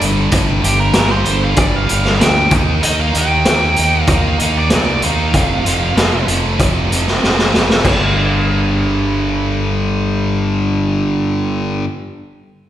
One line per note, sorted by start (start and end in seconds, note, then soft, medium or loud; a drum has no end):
0.00 0.30 G1 medium
0.00 0.30 G2 medium
0.00 0.30 D3 medium
0.00 0.32 G3 medium
0.00 closed hi-hat medium
0.31 0.62 G1 medium
0.31 0.61 G2 medium
0.31 0.61 D3 medium
0.31 0.63 G3 loud
0.31 kick loud
0.31 closed hi-hat medium
0.62 0.93 G1 medium
0.62 0.92 G2 medium
0.62 0.93 D3 medium
0.62 0.94 G3 medium
0.62 0.80 G4 medium
0.62 closed hi-hat medium
0.80 1.10 A#4 medium
0.93 1.24 G1 medium
0.93 1.24 G2 medium
0.93 1.24 D3 loud
0.93 1.26 G3 loud
0.93 snare loud
0.93 closed hi-hat medium
1.12 1.41 C5 medium
1.25 1.56 G1 medium
1.25 1.55 G2 medium
1.25 1.56 D3 medium
1.25 1.56 G3 medium
1.25 closed hi-hat medium
1.44 1.59 F5 medium
1.56 1.86 G1 medium
1.56 1.86 G2 loud
1.56 1.86 D3 loud
1.56 1.87 G3 loud
1.56 1.76 D5 medium
1.56 kick loud
1.56 closed hi-hat medium
1.76 2.20 F5 medium
1.87 2.17 G2 medium
1.87 2.18 D3 medium
1.87 2.19 G3 medium
1.87 closed hi-hat medium
1.91 2.19 G1 medium
2.05 snare soft
2.19 2.50 D2 medium
2.19 2.49 G2 medium
2.19 2.49 D3 medium
2.19 2.49 G3 loud
2.19 snare loud
2.19 closed hi-hat medium
2.23 2.52 G5 medium
2.51 2.81 D#2 medium
2.51 2.81 D#3 medium
2.51 2.82 A#3 medium
2.51 2.83 D#4 loud
2.51 kick loud
2.51 closed hi-hat medium
2.82 3.13 D#2 medium
2.82 3.13 D#3 medium
2.82 3.13 A#3 medium
2.82 3.14 D#4 loud
2.82 2.98 D#5 loud
2.82 closed hi-hat medium
3.01 3.15 F5 medium
3.14 3.44 D#2 medium
3.14 3.45 D#3 medium
3.14 3.46 A#3 medium
3.14 3.47 D#4 medium
3.14 4.02 G5 medium
3.14 closed hi-hat medium
3.45 3.76 D#2 medium
3.45 3.75 D#3 medium
3.45 3.75 A#3 loud
3.45 3.76 D#4 loud
3.45 snare loud
3.45 closed hi-hat medium
3.76 4.07 D#2 medium
3.76 4.04 D#3 medium
3.76 4.05 A#3 medium
3.76 4.05 D#4 medium
3.76 closed hi-hat medium
4.02 4.36 D#3 medium
4.02 4.37 F5 medium
4.06 4.37 D#2 medium
4.06 4.38 A#3 medium
4.06 4.38 D#4 loud
4.06 kick loud
4.06 closed hi-hat medium
4.37 4.69 D#2 medium
4.37 4.69 D#3 medium
4.37 4.69 A#3 medium
4.37 4.70 D#4 medium
4.37 closed hi-hat medium
4.43 4.57 F5 medium
4.58 4.72 D5 medium
4.70 5.01 C2 medium
4.70 5.00 D#3 medium
4.70 5.00 A#3 medium
4.70 5.01 D#4 medium
4.70 snare loud
4.70 closed hi-hat medium
4.74 5.03 D5 medium
5.01 5.32 D#2 medium
5.01 5.31 D#3 medium
5.01 5.31 A#3 medium
5.01 5.32 D#4 medium
5.01 6.25 F5 medium
5.01 closed hi-hat medium
5.31 5.63 F1 medium
5.31 5.63 F2 medium
5.31 5.64 C3 medium
5.31 5.64 F3 loud
5.31 kick loud
5.31 closed hi-hat medium
5.65 5.95 F1 medium
5.65 5.94 F2 medium
5.65 5.94 C3 medium
5.65 5.95 F3 medium
5.65 closed hi-hat medium
5.95 6.26 F1 medium
5.95 6.26 F2 medium
5.95 6.27 C3 medium
5.95 6.27 F3 medium
5.95 snare loud
5.95 closed hi-hat medium
6.27 6.57 F1 medium
6.27 6.57 F2 medium
6.27 6.58 C3 medium
6.27 6.58 F3 medium
6.27 closed hi-hat medium
6.58 6.89 F1 medium
6.58 6.88 F2 medium
6.58 6.88 C3 medium
6.58 6.89 F3 medium
6.58 kick loud
6.58 closed hi-hat medium
6.89 7.21 F1 medium
6.89 7.19 F2 medium
6.89 7.20 C3 medium
6.89 7.21 F3 medium
6.89 closed hi-hat medium
7.07 snare soft
7.20 7.52 F1 medium
7.20 7.51 F2 medium
7.20 7.51 C3 medium
7.20 7.51 F3 medium
7.20 snare medium
7.39 snare medium
7.52 7.83 F1 medium
7.52 7.82 F2 medium
7.52 7.82 C3 medium
7.52 7.82 F3 medium
7.52 snare medium
7.70 snare medium
7.82 11.82 G1 medium
7.82 11.85 G2 medium
7.82 11.85 D3 medium
7.82 11.86 G3 medium
7.82 kick medium
7.82 crash medium